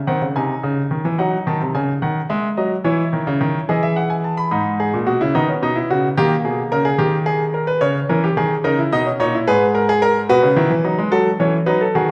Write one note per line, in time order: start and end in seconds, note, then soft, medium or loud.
0.07 0.21 D#3 medium
0.07 0.25 C4 medium
0.07 0.25 F#5 medium
0.22 0.35 C#3 medium
0.36 0.53 C3 medium
0.36 1.16 D#4 medium
0.36 1.16 G#5 medium
0.63 0.80 C#3 medium
0.91 1.04 D#3 medium
1.05 1.18 E3 medium
1.18 1.36 F#3 medium
1.18 2.81 D#4 medium
1.18 1.36 F#5 medium
1.47 1.60 D#3 medium
1.47 1.64 A5 medium
1.61 1.74 C3 medium
1.75 1.92 C#3 medium
1.75 1.91 G#5 medium
2.02 2.19 D#3 medium
2.02 2.19 F#5 medium
2.30 2.47 G#3 loud
2.30 2.47 E5 medium
2.57 2.74 F#3 medium
2.57 2.74 D#5 medium
2.84 3.02 E3 loud
2.84 3.65 E4 medium
2.84 3.65 C#5 medium
3.13 3.26 D#3 medium
3.27 3.40 C#3 loud
3.41 3.58 D#3 loud
3.69 4.49 E3 medium
3.69 4.49 G#4 medium
3.69 3.82 D#5 medium
3.83 3.96 E5 medium
3.96 4.09 F#5 medium
4.10 4.23 G#5 medium
4.24 4.37 A5 medium
4.37 4.50 B5 medium
4.51 4.91 G#2 medium
4.51 5.31 D#4 medium
4.51 4.68 B5 medium
4.80 4.96 G#4 medium
4.94 5.06 A#2 medium
5.07 5.20 B2 medium
5.07 5.20 F#4 loud
5.21 5.34 C#3 medium
5.21 5.34 E4 medium
5.35 5.52 D#3 medium
5.35 6.14 B3 medium
5.35 5.48 D#4 medium
5.49 5.61 C#4 medium
5.62 5.79 B2 medium
5.62 5.75 D#4 loud
5.76 5.89 E4 medium
5.90 6.07 C#3 medium
5.90 6.07 F#4 loud
6.17 6.34 D#3 medium
6.17 7.78 A#3 medium
6.17 6.34 G4 loud
6.45 6.61 B2 medium
6.45 6.61 G#4 medium
6.72 6.89 C#3 medium
6.72 6.85 A#4 loud
6.85 6.98 G#4 loud
6.98 7.79 D#3 medium
6.98 7.16 G4 loud
7.26 7.43 G#4 loud
7.54 7.67 A#4 medium
7.67 7.81 B4 loud
7.81 7.98 C#3 medium
7.81 8.61 C#4 loud
7.81 7.98 C#5 loud
8.09 8.26 E3 loud
8.09 8.22 A#4 medium
8.24 8.36 G4 medium
8.37 8.54 D#3 medium
8.37 8.54 G#4 loud
8.64 8.81 C#3 medium
8.64 8.77 D#4 medium
8.64 8.81 A#4 loud
8.79 8.92 E4 medium
8.92 9.09 B2 medium
8.92 9.05 D#4 medium
8.92 9.09 D#5 loud
9.06 9.19 C#4 medium
9.20 9.37 A#2 medium
9.20 9.33 D#4 medium
9.20 9.37 C#5 loud
9.34 9.47 E4 medium
9.47 10.27 G#2 loud
9.47 9.88 G#4 loud
9.47 9.64 B4 loud
9.75 9.88 A#4 loud
9.89 10.02 G#4 loud
10.02 10.19 A#4 loud
10.29 10.43 B2 loud
10.29 10.46 F#4 loud
10.29 11.09 B4 loud
10.43 10.56 C#3 medium
10.56 10.70 D#3 loud
10.56 10.74 E4 medium
10.70 10.84 E3 medium
10.84 10.97 F#3 medium
10.84 11.01 D#4 medium
10.98 11.12 G#3 medium
11.11 11.29 F#3 medium
11.11 11.29 F#4 medium
11.11 11.29 A4 loud
11.40 11.57 E3 medium
11.40 11.57 C#4 medium
11.40 11.57 C#5 medium
11.66 11.84 F#3 loud
11.66 11.84 D#4 medium
11.66 11.80 B4 medium
11.81 11.94 A4 medium
11.95 12.11 D#3 medium
11.95 12.08 F#4 medium
11.95 12.08 G#4 loud